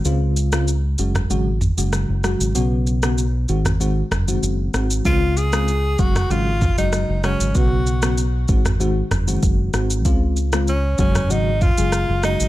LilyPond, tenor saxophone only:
\new Staff \with { instrumentName = "Tenor saxophone" } { \time 4/4 \key des \major \tempo 4 = 96 r1 | r1 | f'8 aes'4 ges'8 f'8. ees'8. des'8 | ges'4 r2. |
r4 des'8 des'8 ees'8 f'4 ees'8 | }